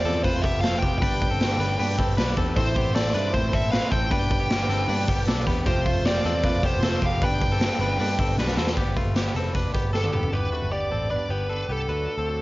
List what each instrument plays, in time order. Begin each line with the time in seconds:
Already playing: string section C3 F3 A3 F4, synth keys C4 F4 A4 C5, lead electric guitar D5
0.04 picked electric bass E2, twelve-string acoustic guitar C4 F4 A4, hi-hat pedal, open hi-hat
0.24 picked electric bass F2, twelve-string acoustic guitar F3 A3 C4 F4 A4, synth keys C4 F4 A4 C5, clean electric guitar B4, lead electric guitar C5, kick, hi-hat pedal, open hi-hat
0.42 picked electric bass F1, clean electric guitar B3 G4, twelve-string acoustic guitar C4 F4 A4, lead electric guitar E5, kick, hi-hat pedal, open hi-hat
0.61 picked electric bass F1, twelve-string acoustic guitar A3 C4 F4, synth keys C4 F4 A4 C5, lead electric guitar F5, snare, hi-hat pedal, open hi-hat
0.65 twelve-string acoustic guitar A4
0.80 picked electric bass F1, clean electric guitar B3 G4, twelve-string acoustic guitar A4, lead electric guitar G5, kick, hi-hat pedal, open hi-hat
0.84 twelve-string acoustic guitar C4 F4
0.99 picked electric bass G1, twelve-string acoustic guitar G3, synth keys B3 D4 G4 B4, lead electric guitar G5, kick, hi-hat pedal, open hi-hat
1.03 string section D3 G3 B3 G4, twelve-string acoustic guitar D4 G4 B4
1.21 twelve-string acoustic guitar D4 G4 B4, kick, hi-hat pedal, open hi-hat
1.31 clean electric guitar C4 A4
1.40 twelve-string acoustic guitar G3 D4 G4 B4, synth keys B3 D4 G4 B4, snare, hi-hat pedal, open hi-hat
1.59 picked electric bass G1, twelve-string acoustic guitar D4 G4 B4, hi-hat pedal, open hi-hat
1.79 picked electric bass G2, twelve-string acoustic guitar G3 D4 G4 B4, synth keys B3 D4 G4 B4, hi-hat pedal, open hi-hat
1.98 picked electric bass G1, clean electric guitar C4 A4, twelve-string acoustic guitar D4 G4 B4, kick, hi-hat pedal, open hi-hat
2.17 picked electric bass B1, twelve-string acoustic guitar G3 D4 G4 B4, synth keys B3 D4 G4 B4, snare, hi-hat pedal, open hi-hat
2.37 picked electric bass E2, clean electric guitar C4 A4, twelve-string acoustic guitar D4 G4 B4, kick, hi-hat pedal, open hi-hat
2.56 picked electric bass A1, twelve-string acoustic guitar A2 E3 A3 C4 E4 C5, string section C3 E3 A3 E4, synth keys C4 E4 A4 C5, clean electric guitar A4, lead electric guitar C5, kick, hi-hat pedal, open hi-hat
2.76 twelve-string acoustic guitar A3 C4 E4 C5, clean electric guitar B3 G4, kick, hi-hat pedal, open hi-hat
2.95 twelve-string acoustic guitar A3 C4 E4 C5, synth keys C4 E4 A4 C5, clean electric guitar A4, lead electric guitar D5, snare, hi-hat pedal, open hi-hat
3.14 picked electric bass G2, twelve-string acoustic guitar A3 C4 E4 C5, clean electric guitar D4 B4, lead electric guitar D5, hi-hat pedal, open hi-hat
3.34 picked electric bass A2, twelve-string acoustic guitar A2 E3 A3 C4 E4 C5, synth keys C4 E4 A4 D5, lead electric guitar C5, kick, hi-hat pedal, open hi-hat
3.53 picked electric bass A1, twelve-string acoustic guitar A3 C4 E4 C5, clean electric guitar A4, lead electric guitar E5, kick, hi-hat pedal, open hi-hat
3.71 twelve-string acoustic guitar A3 C4 E4 C5, synth keys C4 E4 A4 D5, clean electric guitar B4, lead electric guitar F5, snare, hi-hat pedal, open hi-hat
3.91 picked electric bass A1, twelve-string acoustic guitar A3 C4 E4 C5, clean electric guitar A4, lead electric guitar G5, kick, hi-hat pedal, open hi-hat
4.11 picked electric bass G1, string section D3 G3 B3 G4, twelve-string acoustic guitar G3 D4 G4 B4, synth keys B3 D4 G4 B4, lead electric guitar G5, kick, hi-hat pedal, open hi-hat
4.30 twelve-string acoustic guitar D4 G4 B4, kick, hi-hat pedal, open hi-hat
4.40 clean electric guitar B3 G4
4.49 twelve-string acoustic guitar G3 D4 G4 B4, synth keys B3 D4 G4 B4, snare, hi-hat pedal, open hi-hat
4.68 picked electric bass G1, clean electric guitar C4 A4, twelve-string acoustic guitar D4 G4 B4, hi-hat pedal, open hi-hat
4.88 picked electric bass G2, twelve-string acoustic guitar G3 D4 G4 B4, synth keys B3 D4 G4 B4, hi-hat pedal, open hi-hat
5.08 picked electric bass G1, clean electric guitar B3, twelve-string acoustic guitar D4 G4 B4, kick, hi-hat pedal, open hi-hat
5.26 picked electric bass B1, twelve-string acoustic guitar G3 D4 G4 B4, synth keys B3 D4 G4 D5, clean electric guitar A4, snare, hi-hat pedal, open hi-hat
5.46 picked electric bass E2, clean electric guitar B3, twelve-string acoustic guitar D4 G4 B4, kick, hi-hat pedal, open hi-hat
5.65 picked electric bass F1, string section C3 F3 A3 F4, twelve-string acoustic guitar F3 A3 C4 F4 A4, synth keys C4 F4 A4 C5, clean electric guitar G4, lead electric guitar C5, kick, hi-hat pedal, open hi-hat
5.85 clean electric guitar A3, twelve-string acoustic guitar C4 F4 A4, kick, hi-hat pedal, open hi-hat
6.04 twelve-string acoustic guitar A3 C4 F4 A4, synth keys C4 F4 A4 C5, clean electric guitar G4, lead electric guitar D5, snare, hi-hat pedal, open hi-hat
6.23 picked electric bass E2, twelve-string acoustic guitar C4 F4 A4, lead electric guitar D5, hi-hat pedal, open hi-hat
6.43 picked electric bass F2, twelve-string acoustic guitar F3 A3 C4 F4 A4, synth keys C4 F4 A4 C5, clean electric guitar B4, kick, hi-hat pedal, open hi-hat
6.63 picked electric bass F1, clean electric guitar B3 G4, twelve-string acoustic guitar C4 F4 A4, lead electric guitar C5, kick, hi-hat pedal, open hi-hat
6.82 picked electric bass F1, twelve-string acoustic guitar A3 C4 F4 A4, synth keys C4 F4 A4 C5, snare, hi-hat pedal, open hi-hat
7.02 picked electric bass F1, clean electric guitar B3 G4, twelve-string acoustic guitar C4 F4 A4, kick, hi-hat pedal, open hi-hat
7.06 lead electric guitar F5
7.22 picked electric bass G1, string section D3 G3 B3 G4, twelve-string acoustic guitar G3 D4 G4 B4, synth keys B3 D4 G4 B4, lead electric guitar G5, kick, hi-hat pedal, open hi-hat
7.41 twelve-string acoustic guitar D4 G4 B4, kick, hi-hat pedal, open hi-hat
7.52 clean electric guitar C4 A4
7.61 twelve-string acoustic guitar G3 D4 G4 B4, synth keys B3 D4 G4 B4, snare, hi-hat pedal, open hi-hat
7.79 picked electric bass G1, twelve-string acoustic guitar D4 G4 B4, hi-hat pedal, open hi-hat
7.99 picked electric bass G2, twelve-string acoustic guitar G3 D4 G4 B4, synth keys B3 D4 G4 A4, hi-hat pedal, open hi-hat
8.18 picked electric bass G1, clean electric guitar C4 A4, twelve-string acoustic guitar D4 G4 B4, kick, hi-hat pedal, open hi-hat
8.38 picked electric bass B1, twelve-string acoustic guitar G3 D4 G4 B4, synth keys B3 D4 G4 B4, snare
8.47 snare
8.57 picked electric bass E2, clean electric guitar C4 A4, twelve-string acoustic guitar D4 G4 B4, snare
8.67 snare
8.77 picked electric bass G1, twelve-string acoustic guitar G3 D4 G4 B4, clean electric guitar B3, kick, closed hi-hat
8.96 clean electric guitar A3 F4, twelve-string acoustic guitar D4 G4 B4, kick, closed hi-hat
9.05 picked electric bass G1
9.16 twelve-string acoustic guitar G3 D4 G4 B4, clean electric guitar B3, snare, closed hi-hat
9.35 picked electric bass F1, clean electric guitar C4 A4, twelve-string acoustic guitar D4 G4 B4, closed hi-hat
9.54 twelve-string acoustic guitar G3 D4 G4 B4, kick, closed hi-hat
9.74 picked electric bass G1, clean electric guitar B3, twelve-string acoustic guitar D4 G4 B4, kick, closed hi-hat
9.93 twelve-string acoustic guitar G3 D4 G4 B4, clean electric guitar A4, lead electric guitar A4, snare
10.04 high tom
10.13 picked electric bass F1, clean electric guitar B3, twelve-string acoustic guitar G4 B4, mid tom
10.23 floor tom
10.32 picked electric bass G1, twelve-string acoustic guitar G2 D3 G3 B3 D4 G4, string section D3 G3 B3 G4, lead electric guitar B4
10.52 twelve-string acoustic guitar G3 B3 D4 G4, clean electric guitar A3 F#4
10.62 picked electric bass G1
10.72 twelve-string acoustic guitar G3 B3 D4 G4, lead electric guitar D5
10.91 picked electric bass A1, twelve-string acoustic guitar G3 B3 D4, clean electric guitar C4 A4
11.11 twelve-string acoustic guitar G2 D3 G3 B3 D4 G4, clean electric guitar B4, lead electric guitar D5
11.29 picked electric bass G1, twelve-string acoustic guitar G3 B3 D4 G4, lead electric guitar B4
11.49 twelve-string acoustic guitar G3 B3 D4 G4, clean electric guitar A4
11.69 picked electric bass C2, twelve-string acoustic guitar G3 B3 D4 G4, lead electric guitar A4
11.89 picked electric bass D2, twelve-string acoustic guitar D3 F#3 A3 D4 F#4, string section F#3 A3 F#4, clean electric guitar B4
12.08 twelve-string acoustic guitar A3 D4 F#4
12.17 picked electric bass D2, clean electric guitar C4 A4
12.28 twelve-string acoustic guitar F#3 A3 D4 F#4